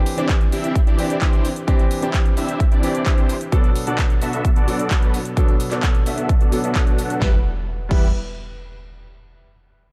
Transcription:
Already playing: grand piano E3 C4 D4 G4
0.06 open hi-hat, shaker
0.17 grand piano E3 C4 D4 G4, supersaw synth C4 D4 E4 G4 D5, closed hi-hat, shaker
0.29 kick, clap, closed hi-hat, shaker
0.41 closed hi-hat, shaker
0.52 supersaw synth C4 D4 E4 G4 E5, open hi-hat, shaker
0.64 closed hi-hat, shaker
0.75 kick, closed hi-hat, shaker
0.87 supersaw synth C4 D4 E4 G4 D5, closed hi-hat, shaker
0.97 grand piano E3 C4 D4 G4, open hi-hat, shaker
1.10 closed hi-hat, shaker
1.21 supersaw synth C4 D4 E4 G4 C5, kick, clap, closed hi-hat, shaker
1.33 closed hi-hat, shaker
1.45 open hi-hat, shaker
1.56 closed hi-hat, shaker
1.67 grand piano E3 C4 D4 G4, supersaw synth C4 D4 E4 G4 D5, kick, closed hi-hat, shaker
1.79 closed hi-hat, shaker
1.91 open hi-hat, shaker
2.01 grand piano E3 C4 D4 G4, supersaw synth C4 D4 E4 G4 D5, closed hi-hat, shaker
2.14 kick, clap, closed hi-hat, shaker
2.26 closed hi-hat, shaker
2.37 supersaw synth C4 D4 E4 G4 E5, open hi-hat, shaker
2.48 closed hi-hat, shaker
2.60 kick, closed hi-hat, shaker
2.71 supersaw synth C4 D4 E4 G4 D5, closed hi-hat, shaker
2.82 grand piano E3 C4 D4 G4, open hi-hat, shaker
2.95 closed hi-hat, shaker
3.06 supersaw synth C4 D4 E4 G4 C5, kick, clap, closed hi-hat, shaker
3.18 closed hi-hat, shaker
3.29 open hi-hat, shaker
3.41 closed hi-hat, shaker
3.52 grand piano B2 F#3 B3 D4 A4, supersaw synth B3 D4 F#4 A4 D5, kick, closed hi-hat, shaker
3.64 closed hi-hat, shaker
3.75 open hi-hat, shaker
3.86 grand piano B2 F#3 B3 D4 A4, supersaw synth B3 D4 F#4 A4 D5, closed hi-hat, shaker
3.98 kick, clap, closed hi-hat, shaker
4.10 closed hi-hat, shaker
4.22 supersaw synth B3 D4 F#4 A4 E5, open hi-hat, shaker
4.33 closed hi-hat, shaker
4.45 kick, closed hi-hat, shaker
4.56 supersaw synth B3 D4 F#4 A4 D5, closed hi-hat, shaker
4.67 grand piano B2 F#3 B3 D4 A4, open hi-hat, shaker
4.79 closed hi-hat, shaker
4.91 supersaw synth B3 D4 F#4 A4 B4, kick, clap, closed hi-hat, shaker
5.02 closed hi-hat, shaker
5.14 open hi-hat, shaker
5.25 closed hi-hat, shaker
5.36 grand piano B2 F#3 B3 D4 A4, supersaw synth B3 D4 F#4 A4 D5, kick, closed hi-hat, shaker
5.48 closed hi-hat, shaker
5.60 open hi-hat, shaker
5.70 grand piano B2 F#3 B3 D4 A4, supersaw synth B3 D4 F#4 A4 D5, clap, closed hi-hat, shaker
5.83 kick, clap, closed hi-hat, shaker
5.95 closed hi-hat, shaker
6.06 supersaw synth B3 D4 F#4 A4 E5, open hi-hat, shaker
6.18 closed hi-hat, shaker
6.29 kick, closed hi-hat, shaker
6.41 supersaw synth B3 D4 F#4 A4 D5, closed hi-hat, shaker
6.51 grand piano B2 F#3 B3 D4 A4, open hi-hat, shaker
6.64 supersaw synth B3 D4 F#4 A4 E5, closed hi-hat, shaker
6.75 supersaw synth B3 D4 F#4 A4 F#5, kick, clap, closed hi-hat, shaker
6.87 closed hi-hat, shaker
6.99 open hi-hat, shaker
7.10 closed hi-hat, shaker
7.20 analog synth bass E2, grand piano G3 B3 E4 B4, supersaw synth E4 G4 B4, kick, snare, impact
7.89 analog synth bass E2, grand piano G3 B3 E4 B4, supersaw synth E4 G4 B4, kick, crash

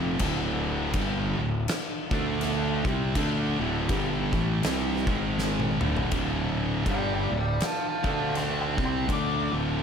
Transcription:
Already playing: fingered electric bass F1, distorted electric guitar F2 C3 F3
0.19 fingered electric bass D1, distorted electric guitar D2 A2 D3, kick, crash
0.94 fingered electric bass G1, distorted electric guitar G2 D3 G3, kick, crash
1.37 fingered electric bass D1, distorted electric guitar D2 A2
1.68 snare, crash
2.11 fingered electric bass D2, distorted electric guitar D3 A3 D4, kick
2.41 snare, crash
2.85 fingered electric bass C2, distorted electric guitar C3 G3 C4, kick
3.15 fingered electric bass D2, distorted electric guitar D3 A3 D4, kick, crash
3.58 fingered electric bass D1, distorted electric guitar D2 A2 D3
3.89 fingered electric bass G1, distorted electric guitar G2 D3 G3, kick, crash
4.33 fingered electric bass A1, distorted electric guitar A2 E3 A3, kick
4.63 fingered electric bass C2, distorted electric guitar C3 G3 C4, snare, crash
5.06 fingered electric bass G#1, distorted electric guitar G#2 D#3 G#3, kick
5.39 snare
5.60 high tom
5.80 fingered electric bass D1, distorted electric guitar D2 A2 D3, mid tom
5.97 floor tom
6.11 fingered electric bass D1, distorted electric guitar D2 A2 D3, kick, crash
6.86 fingered electric bass G1, distorted electric guitar G2 D3 G3, kick, crash
6.90 lead electric guitar D5 G5
7.14 lead electric guitar D5 G5
7.30 fingered electric bass D1, distorted electric guitar D2 A2
7.40 lead electric guitar D5 G5
7.60 lead electric guitar F5, snare, crash
7.65 lead electric guitar A5
7.89 lead electric guitar F5 A5
8.03 fingered electric bass D2, distorted electric guitar D3 A3 D4, kick
8.11 lead electric guitar F5 A5
8.35 lead electric guitar G5 C6, snare, crash
8.61 lead electric guitar G5 C6
8.77 fingered electric bass C2, distorted electric guitar C3 G3 C4, kick
8.85 lead electric guitar G5 C6
9.07 fingered electric bass D2, distorted electric guitar D3 A3 D4, kick, crash
9.12 lead electric guitar D6
9.52 fingered electric bass D1, distorted electric guitar D2 A2 D3

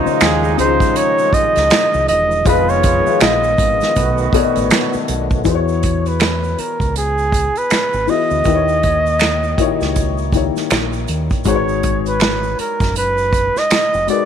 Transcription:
Already playing: horn section C3 G#3 D#4, upright piano C#3 F4 C5 C#5 D#5, tonewheel organ D#3 F3 G#3 D#4
0.06 upright piano C#3 F4 C5 C#5, muted fingered electric bass stroke, shaker
0.10 upright piano F5
0.20 fingered electric bass D#2, flugelhorn G#4, finger snap, snare, closed hi-hat, shaker
0.44 shaker
0.57 fingered electric bass C#2, upright piano C#3 D#4 G#4, flugelhorn C5, closed hi-hat, shaker
0.62 upright piano D#5
0.66 upright piano F4
0.80 kick, closed hi-hat, shaker
0.96 flugelhorn C#5, closed hi-hat, shaker
1.19 shaker
1.33 flugelhorn D#5, muted fingered electric bass stroke, kick, closed hi-hat
1.56 fingered electric bass C#2, snare, closed hi-hat, shaker
1.70 finger snap, snare, closed hi-hat, shaker
1.94 fingered electric bass C2, shaker
2.08 fingered electric bass E1, flugelhorn D#5, closed hi-hat
2.31 shaker
2.45 fingered electric bass F1, tonewheel organ D#3 G#3 B3 F4, upright piano F3 F4 G#4 B4, horn section G#3 B3 F4, flugelhorn B4, kick, closed hi-hat, shaker
2.49 upright piano D#5
2.69 flugelhorn C#5, shaker
2.83 kick, closed hi-hat, shaker
3.05 upright piano F3 F4 G#4 B4, muted fingered electric bass stroke, shaker
3.09 upright piano F5
3.21 fingered electric bass A#1, flugelhorn D#5, finger snap, snare, closed hi-hat, shaker
3.44 shaker
3.58 fingered electric bass G#1, kick, closed hi-hat, shaker
3.81 snare, closed hi-hat, shaker
3.95 fingered electric bass B1, horn section D#3 B3 F#4, tonewheel organ A3 F#4, kick, closed hi-hat, shaker
4.18 shaker
4.32 upright piano B2 B3 A4 C#5 D5, kick, closed hi-hat
4.43 upright piano D#5
4.56 fingered electric bass A1, closed hi-hat, shaker
4.70 finger snap, snare, closed hi-hat, shaker
4.93 muted fingered electric bass stroke, shaker
5.08 fingered electric bass B1, closed hi-hat
5.31 kick, shaker
5.44 fingered electric bass E2, upright piano E3 B3 F#4 G#4, flugelhorn C#5, kick, closed hi-hat, shaker
5.48 upright piano C5
5.55 upright piano C#5
5.68 shaker
5.83 kick, closed hi-hat
6.06 flugelhorn B4, closed hi-hat, shaker
6.20 finger snap, snare, closed hi-hat, shaker
6.44 shaker
6.58 flugelhorn A#4, muted fingered electric bass stroke, closed hi-hat
6.80 fingered electric bass C#2, kick, closed hi-hat, shaker
6.96 flugelhorn G#4, closed hi-hat, shaker
7.18 shaker
7.32 kick, closed hi-hat, shaker
7.55 flugelhorn B4, closed hi-hat, shaker
7.70 finger snap, muted fingered electric bass stroke, snare, closed hi-hat, shaker
7.93 fingered electric bass G#1, shaker
8.07 upright piano E3 B3 F#4 G#4, flugelhorn D#5, open hi-hat, shaker
8.11 upright piano E4
8.30 fingered electric bass D2, shaker
8.44 fingered electric bass D#2, upright piano D#3 A#3 E4 G4, kick, closed hi-hat, shaker
8.48 upright piano B4
8.55 upright piano C#5
8.68 shaker
8.83 kick, closed hi-hat
9.06 shaker
9.20 finger snap, snare, closed hi-hat, shaker
9.43 shaker
9.57 upright piano D#3 A#3 E4 F#4 C#5, kick, closed hi-hat
9.67 upright piano G4
9.81 fingered electric bass C#2, snare, shaker
9.96 kick, closed hi-hat, shaker
10.18 shaker
10.32 upright piano D#3 A#3 E4 G4, kick, closed hi-hat, shaker
10.36 upright piano C#5
10.56 snare, shaker
10.70 fingered electric bass A#1, finger snap, snare, closed hi-hat, shaker
10.93 shaker
11.08 fingered electric bass D#2, closed hi-hat, shaker
11.30 kick, closed hi-hat, shaker
11.44 fingered electric bass G#1, upright piano G#3 D#4 F#4 G#4 B4, flugelhorn C#5, kick, closed hi-hat, shaker
11.49 upright piano C5
11.55 upright piano C#5
11.69 shaker
11.83 kick, closed hi-hat
12.06 flugelhorn B4, closed hi-hat, shaker
12.20 finger snap, snare, closed hi-hat, shaker
12.43 shaker
12.59 flugelhorn A#4, muted fingered electric bass stroke, closed hi-hat
12.80 fingered electric bass F#1, kick, snare, closed hi-hat, shaker
12.96 flugelhorn B4, closed hi-hat, shaker
13.18 shaker
13.33 kick, closed hi-hat, shaker
13.57 flugelhorn D#5, snare, shaker
13.70 finger snap, muted fingered electric bass stroke, snare, closed hi-hat, shaker
13.94 fingered electric bass F1, shaker
14.07 upright piano G#3 D#4 F#4 A#4 B4, flugelhorn D5, closed hi-hat, shaker
14.11 upright piano G#4

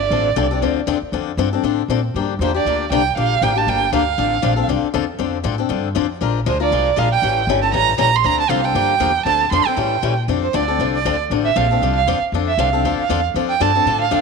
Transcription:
Already playing: violin D5
0.10 upright bass A1, steel-string acoustic guitar D3 F3 C4 D4 A4
0.36 upright bass C2, steel-string acoustic guitar D3 F3 C4 D4 A4
0.51 steel-string acoustic guitar C4 D4 A4
0.61 upright bass D2, steel-string acoustic guitar D3 F3 C4 D4 A4
0.87 upright bass E2, steel-string acoustic guitar D3 F3 C4 D4 A4
1.02 muted upright bass stroke
1.12 upright bass F2, steel-string acoustic guitar D3 F3 C4 D4 A4
1.37 upright bass G2, steel-string acoustic guitar D3 F3 C4 D4 A4
1.53 steel-string acoustic guitar C4 D4 A4
1.63 upright bass A2, steel-string acoustic guitar D3 F3 C4 D4 A4
1.88 upright bass A#2, steel-string acoustic guitar D3 F3 C4 D4 A4
2.14 upright bass G2, steel-string acoustic guitar D3 F3 A#3 D4 G4
2.39 upright bass E2, steel-string acoustic guitar D3 F3 A#3 D4 G4, violin C5
2.54 steel-string acoustic guitar A#3 D4 G4, violin D5
2.65 upright bass D2, steel-string acoustic guitar D3 F3 A#3 D4 G4
2.90 upright bass C2, steel-string acoustic guitar D3 F3 A#3 D4 G4, violin G5
3.16 upright bass A#1, steel-string acoustic guitar D3 F3 A#3 D4 G4, violin F5
3.41 upright bass A1, steel-string acoustic guitar D3 F3 A#3 D4 G4, violin G5
3.56 steel-string acoustic guitar A#3 D4 G4, violin A5
3.67 upright bass G1, steel-string acoustic guitar D3 F3 A#3 D4 G4, violin G5
3.92 upright bass D2, steel-string acoustic guitar D3 F3 A#3 D4 G4, violin F5
4.18 upright bass A1, steel-string acoustic guitar D3 F3 C4 D4 A4
4.42 upright bass A#1, steel-string acoustic guitar D3 F3 C4 D4 A4
4.56 steel-string acoustic guitar C4 D4 A4
4.68 upright bass C2, steel-string acoustic guitar D3 F3 C4 D4 A4
4.83 muted upright bass stroke
4.94 upright bass E2, steel-string acoustic guitar D3 F3 C4 D4 A4
5.19 upright bass F2, steel-string acoustic guitar D3 F3 C4 D4 A4
5.44 upright bass A2, steel-string acoustic guitar D3 F3 C4 D4 A4
5.58 steel-string acoustic guitar C4 D4 A4
5.69 upright bass G2, steel-string acoustic guitar D3 F3 C4 D4 A4
5.95 upright bass F2, steel-string acoustic guitar D3 F3 C4 D4 A4
6.21 upright bass A#1, steel-string acoustic guitar F3 G#3 D4 F4 A#4
6.46 upright bass D2, steel-string acoustic guitar F3 G#3 D4 F4 A#4, violin C5
6.60 steel-string acoustic guitar D4 F4 A#4, violin D5
6.71 upright bass C2, steel-string acoustic guitar F3 G#3 D4 F4 A#4
6.96 upright bass A#1, steel-string acoustic guitar F3 G#3 D4 F4 A#4, violin F5
7.12 violin G5
7.22 upright bass A1, steel-string acoustic guitar E3 G3 C#4 E4 A4
7.47 upright bass G1, steel-string acoustic guitar E3 G3 C#4 E4 A4
7.62 steel-string acoustic guitar C#4 E4 A4, violin A5
7.73 upright bass A1, steel-string acoustic guitar E3 G3 C#4 E4 A4, violin A#5
7.98 upright bass A#1, steel-string acoustic guitar E3 G3 C#4 E4 A4, violin A#5
8.16 violin C6
8.24 upright bass D2, steel-string acoustic guitar D3 F3 C4 D4 A4, violin A#5
8.40 violin A5
8.49 upright bass C2, steel-string acoustic guitar D3 F3 C4 D4 A4, violin F5
8.64 steel-string acoustic guitar C4 D4 A4, violin G5
8.75 upright bass G2, steel-string acoustic guitar D3 F3 A#3 D4 G4
9.00 upright bass E2, steel-string acoustic guitar D3 F3 A#3 D4 G4
9.25 upright bass D2, steel-string acoustic guitar D3 F3 C4 D4 A4, violin A5
9.51 upright bass F2, steel-string acoustic guitar D3 F3 C4 D4 A4, violin C6
9.66 steel-string acoustic guitar C4 D4 A4, violin G5, muted upright bass stroke
9.76 upright bass A2, steel-string acoustic guitar E3 G3 C#4 E4 A4
10.03 upright bass A#2, steel-string acoustic guitar E3 G3 C#4 E4 A4
10.28 upright bass F2, steel-string acoustic guitar D3 F3 C4 D4 A4
10.43 violin C5
10.53 upright bass D2, steel-string acoustic guitar D3 F3 C4 D4 A4, violin D5
10.68 steel-string acoustic guitar C4 D4 A4
10.79 upright bass C2, steel-string acoustic guitar D3 F3 C4 D4 A4
10.94 violin D5
11.05 upright bass D2, steel-string acoustic guitar D3 F3 C4 D4 A4
11.30 upright bass A1, steel-string acoustic guitar D3 F3 C4 D4 A4
11.45 violin E5
11.56 upright bass A#1, steel-string acoustic guitar D3 F3 C4 D4 A4, violin F5
11.71 steel-string acoustic guitar C4 D4 A4
11.82 upright bass C2, steel-string acoustic guitar D3 F3 C4 D4 A4
11.96 violin F5
12.07 upright bass E2, steel-string acoustic guitar D3 F3 C4 D4 A4
12.21 muted upright bass stroke
12.32 upright bass F2, steel-string acoustic guitar D3 F3 C4 D4 A4
12.48 violin E5
12.57 upright bass C2, steel-string acoustic guitar D3 F3 C4 D4 A4, violin F5
12.73 steel-string acoustic guitar C4 D4 A4
12.84 upright bass D2, steel-string acoustic guitar D3 F3 C4 D4 A4
12.98 violin F5, muted upright bass stroke
13.09 upright bass E2, steel-string acoustic guitar D3 F3 C4 D4 A4
13.34 upright bass F2, steel-string acoustic guitar D3 F3 C4 D4 A4
13.49 violin G5
13.60 upright bass G2, steel-string acoustic guitar D3 F3 C4 D4 A4, violin A5
13.75 steel-string acoustic guitar C4 D4 A4
13.85 upright bass A2, steel-string acoustic guitar D3 F3 C4 D4 A4
14.01 violin F5
14.11 upright bass F2, steel-string acoustic guitar D3 F3 C4 D4 A4

